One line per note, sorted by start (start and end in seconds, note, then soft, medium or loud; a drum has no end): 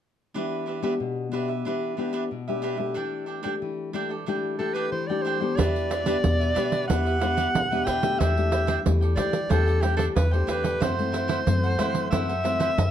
0.34 0.97 E3 medium
0.34 0.79 B3 soft
0.34 0.65 D4 medium
0.34 0.79 D4 soft
0.34 0.66 G4 medium
0.34 0.79 G4 soft
0.34 0.66 B4 medium
0.34 0.67 E5 medium
0.66 0.81 D4 soft
0.66 0.82 G4 soft
0.66 0.82 B4 soft
0.66 0.83 E5 soft
0.82 1.27 B3 medium
0.82 0.92 D4 medium
0.82 1.27 D4 medium
0.82 0.93 G4 medium
0.82 1.28 G4 medium
0.82 0.93 B4 medium
0.82 0.93 E5 medium
1.00 1.62 B2 medium
1.32 1.52 B3 soft
1.32 1.47 D4 medium
1.32 1.52 D4 soft
1.32 1.48 G4 medium
1.32 1.52 G4 medium
1.32 1.48 B4 medium
1.32 1.47 E5 medium
1.48 1.65 G4 soft
1.48 1.65 B4 soft
1.48 1.64 E5 soft
1.65 2.28 E3 medium
1.65 1.93 B3 soft
1.65 1.96 D4 medium
1.65 1.93 D4 soft
1.65 1.97 G4 medium
1.65 1.94 G4 soft
1.65 1.98 B4 medium
1.65 1.98 E5 medium
1.97 2.29 B3 soft
1.97 2.12 D4 soft
1.97 2.29 D4 soft
1.97 2.12 G4 soft
1.97 2.29 G4 medium
1.97 2.12 B4 soft
1.97 2.13 E5 soft
2.13 2.23 D4 medium
2.13 2.23 G4 medium
2.13 2.23 B4 medium
2.13 2.23 E5 medium
2.31 2.93 B2 medium
2.48 2.76 B3 medium
2.48 2.76 D4 medium
2.48 2.61 G4 soft
2.48 2.76 G4 medium
2.48 2.62 B4 soft
2.48 2.63 E5 soft
2.62 2.78 D4 medium
2.62 2.78 G4 medium
2.62 2.77 B4 medium
2.62 2.76 E5 medium
2.77 3.40 A3 medium
2.77 3.40 D4 medium
2.77 2.95 G4 soft
2.77 3.40 G4 medium
2.77 2.94 B4 soft
2.77 2.94 E5 soft
2.94 3.59 E3 medium
2.94 3.25 D4 medium
2.94 3.26 A4 medium
2.94 3.26 D5 medium
2.94 3.27 G5 medium
3.26 3.41 D4 soft
3.26 3.42 A4 soft
3.26 3.43 D5 soft
3.26 3.43 G5 soft
3.43 3.89 A3 medium
3.43 3.53 D4 medium
3.43 3.89 D4 soft
3.43 3.90 G4 medium
3.43 3.54 A4 medium
3.43 3.54 D5 medium
3.43 3.54 G5 medium
3.62 4.24 E3 medium
3.93 4.14 A3 soft
3.93 4.09 D4 medium
3.93 4.14 D4 soft
3.93 4.14 G4 medium
3.93 4.10 A4 medium
3.93 4.09 D5 medium
3.93 4.08 G5 medium
4.09 4.26 A4 soft
4.09 4.26 D5 soft
4.09 4.25 G5 soft
4.26 4.90 E3 medium
4.26 4.55 A3 soft
4.26 4.58 D4 medium
4.26 4.55 D4 soft
4.26 4.55 G4 medium
4.26 4.58 A4 medium
4.26 4.59 D5 medium
4.26 4.60 G5 medium
4.59 5.03 A3 medium
4.59 4.73 D4 soft
4.59 5.04 D4 soft
4.59 5.04 G4 medium
4.59 4.75 A4 medium
4.59 4.74 A4 soft
4.59 4.74 D5 soft
4.59 4.75 G5 soft
4.74 4.85 D4 medium
4.74 4.85 A4 medium
4.74 4.91 B4 medium
4.74 4.85 D5 medium
4.74 4.85 G5 medium
4.92 5.55 E3 medium
4.92 5.09 C5 medium
5.07 5.37 A3 medium
5.07 5.37 D4 medium
5.07 5.38 G4 medium
5.07 5.24 D5 medium
5.07 5.25 D5 soft
5.07 5.24 G5 soft
5.12 5.25 A4 soft
5.22 5.40 D4 medium
5.22 5.41 A4 medium
5.22 5.58 C5 medium
5.26 5.41 D5 medium
5.26 5.39 G5 medium
5.41 6.02 B3 medium
5.41 6.02 D4 soft
5.41 6.02 G4 medium
5.41 5.58 A4 soft
5.41 5.57 D5 soft
5.41 5.56 G5 soft
5.56 6.14 E2 medium
5.56 5.89 D4 medium
5.56 5.90 G4 medium
5.56 5.90 B4 medium
5.56 6.87 D5 loud
5.56 5.90 E5 medium
5.56 pandeiro medium
5.76 pandeiro soft
5.90 6.05 D4 soft
5.90 6.05 G4 soft
5.90 6.06 B4 soft
5.90 6.06 E5 soft
5.90 pandeiro medium
6.06 6.51 B3 medium
6.06 6.16 D4 medium
6.06 6.51 D4 medium
6.06 6.16 G4 medium
6.06 6.51 G4 medium
6.06 6.16 B4 medium
6.06 6.16 E5 medium
6.06 pandeiro medium
6.24 6.52 E2 medium
6.24 6.86 B2 soft
6.24 pandeiro medium
6.39 6.54 G4 soft
6.39 6.55 B4 soft
6.39 6.55 E5 soft
6.39 pandeiro soft
6.54 6.84 B3 soft
6.54 6.87 D4 medium
6.54 6.84 D4 soft
6.54 6.87 G4 medium
6.54 6.85 G4 medium
6.54 6.88 B4 medium
6.54 6.88 E5 medium
6.54 pandeiro medium
6.72 pandeiro soft
6.88 7.45 E2 medium
6.88 7.52 E3 medium
6.88 7.18 B3 medium
6.88 7.04 D4 medium
6.88 7.18 D4 soft
6.88 7.04 G4 medium
6.88 7.18 G4 medium
6.88 7.05 B4 medium
6.88 7.04 E5 medium
6.88 7.86 F#5 loud
6.88 pandeiro medium
7.05 7.20 G4 soft
7.05 7.20 B4 soft
7.05 7.20 E5 soft
7.05 pandeiro soft
7.20 7.66 B3 medium
7.20 7.36 D4 soft
7.20 7.66 D4 soft
7.20 7.36 G4 soft
7.20 7.67 G4 medium
7.20 7.36 B4 medium
7.20 7.37 E5 medium
7.20 pandeiro medium
7.37 7.47 D4 medium
7.37 7.47 G4 medium
7.37 7.47 B4 medium
7.37 7.47 E5 medium
7.37 pandeiro soft
7.55 7.82 E2 medium
7.55 8.17 B2 medium
7.55 pandeiro medium
7.71 7.99 B3 medium
7.71 7.99 D4 medium
7.71 7.99 G4 medium
7.71 7.86 G4 soft
7.71 7.87 B4 soft
7.71 7.86 E5 soft
7.71 pandeiro soft
7.85 8.15 E3 medium
7.85 8.02 D4 medium
7.85 8.03 G4 medium
7.85 8.03 B4 medium
7.85 8.02 E5 medium
7.85 8.20 G5 loud
7.85 pandeiro medium
8.03 8.36 A3 medium
8.03 8.37 D4 medium
8.03 8.37 G4 medium
8.03 8.19 G4 soft
8.03 8.19 B4 soft
8.03 8.18 E5 medium
8.03 pandeiro medium
8.19 8.75 E2 medium
8.19 8.83 E3 medium
8.19 8.50 D4 medium
8.19 8.51 A4 medium
8.19 8.51 D5 medium
8.19 8.90 E5 loud
8.19 8.52 G5 medium
8.19 pandeiro medium
8.37 8.81 A3 medium
8.37 8.81 D4 medium
8.37 8.81 G4 medium
8.37 pandeiro soft
8.51 8.66 D4 soft
8.51 8.67 A4 soft
8.51 8.67 D5 medium
8.51 8.67 G5 medium
8.51 pandeiro medium
8.67 8.77 D4 medium
8.67 8.78 A4 medium
8.67 8.78 D5 medium
8.67 8.78 G5 medium
8.67 pandeiro medium
8.85 9.13 E2 medium
8.85 9.48 E3 medium
8.85 9.13 A3 medium
8.85 9.13 D4 soft
8.85 9.13 G4 medium
8.85 pandeiro medium
9.01 9.15 A4 soft
9.01 9.16 D5 soft
9.01 9.16 G5 soft
9.01 pandeiro soft
9.16 9.45 E3 medium
9.16 9.37 A3 soft
9.16 9.48 D4 medium
9.16 9.37 D4 medium
9.16 9.38 G4 medium
9.16 9.49 A4 medium
9.16 9.52 D5 medium
9.16 9.49 D5 medium
9.16 9.49 G5 medium
9.16 pandeiro medium
9.33 pandeiro medium
9.49 10.06 E2 medium
9.49 10.13 E3 medium
9.49 9.79 A3 medium
9.49 9.65 D4 medium
9.49 9.79 D4 medium
9.49 9.79 G4 medium
9.49 9.65 A4 medium
9.49 9.83 A4 loud
9.49 9.66 D5 medium
9.49 9.65 G5 medium
9.49 pandeiro medium
9.66 9.81 A4 soft
9.66 9.82 D5 soft
9.66 9.82 G5 soft
9.66 pandeiro soft
9.81 10.15 A3 medium
9.81 9.95 D4 medium
9.81 10.15 D4 medium
9.81 9.97 G4 medium
9.81 9.96 A4 soft
9.81 9.96 D5 medium
9.81 9.96 G5 medium
9.81 pandeiro medium
9.85 10.15 G4 medium
9.97 10.07 D4 medium
9.97 10.07 A4 medium
9.97 10.05 A4 medium
9.97 10.08 D5 medium
9.97 10.08 G5 medium
9.97 pandeiro medium
10.16 10.44 E2 medium
10.16 10.79 E3 medium
10.16 10.34 B4 medium
10.16 pandeiro medium
10.31 10.79 A3 medium
10.31 10.80 D4 medium
10.31 10.80 G4 medium
10.31 10.47 A4 soft
10.31 10.51 C5 medium
10.31 10.47 D5 soft
10.31 10.47 G5 soft
10.31 pandeiro soft
10.47 10.76 E2 medium
10.47 10.63 D4 medium
10.47 10.63 A4 medium
10.47 10.83 B4 medium
10.47 10.63 D5 medium
10.47 10.62 G5 medium
10.47 pandeiro medium
10.63 10.80 A4 soft
10.63 10.80 D5 soft
10.63 10.79 G5 soft
10.63 pandeiro medium
10.80 11.37 F#2 medium
10.80 11.44 F#2 medium
10.80 10.93 E3 medium
10.80 10.93 A3 soft
10.80 10.94 C4 medium
10.80 11.11 E4 medium
10.80 11.12 A4 medium
10.80 12.10 C5 loud
10.80 11.12 C5 medium
10.80 11.13 F#5 medium
10.80 pandeiro medium
10.99 11.42 E3 medium
10.99 11.43 A3 medium
10.99 11.43 C4 medium
10.99 pandeiro soft
11.12 11.27 E4 soft
11.12 11.28 A4 soft
11.12 11.28 C5 soft
11.12 11.28 F#5 medium
11.12 pandeiro medium
11.28 11.38 E4 medium
11.28 11.39 A4 medium
11.28 11.39 C5 medium
11.28 11.39 F#5 medium
11.28 pandeiro medium
11.46 11.75 F#2 medium
11.46 12.09 F#2 medium
11.46 11.75 E3 medium
11.46 11.75 A3 medium
11.46 11.75 C4 medium
11.46 pandeiro medium
11.63 11.78 A4 soft
11.63 11.79 C5 soft
11.63 11.78 F#5 soft
11.63 pandeiro soft
11.78 12.07 E3 soft
11.78 12.07 F#3 medium
11.78 12.07 A3 soft
11.78 12.08 C4 medium
11.78 12.10 E4 medium
11.78 12.11 A4 medium
11.78 12.11 C5 medium
11.78 12.12 F#5 medium
11.78 pandeiro medium
11.95 pandeiro medium
12.11 12.68 F#2 medium
12.11 12.75 F#2 medium
12.11 12.32 E3 soft
12.11 12.32 A3 medium
12.11 12.32 C4 medium
12.11 12.27 E4 medium
12.11 12.27 A4 medium
12.11 12.27 C5 medium
12.11 12.91 E5 loud
12.11 12.27 F#5 medium
12.11 pandeiro medium
12.28 12.43 A4 soft
12.28 12.43 C5 soft
12.28 12.44 F#5 soft
12.28 pandeiro soft
12.43 12.75 E3 soft
12.43 12.76 A3 medium
12.43 12.76 C4 medium
12.43 12.58 E4 soft
12.43 12.59 A4 medium
12.43 12.59 C5 soft
12.43 12.59 F#5 medium
12.43 pandeiro medium
12.59 12.70 E4 medium
12.59 12.70 A4 medium
12.59 12.70 C5 medium
12.59 12.70 F#5 medium
12.59 pandeiro medium
12.77 12.91 F#2 medium
12.77 pandeiro medium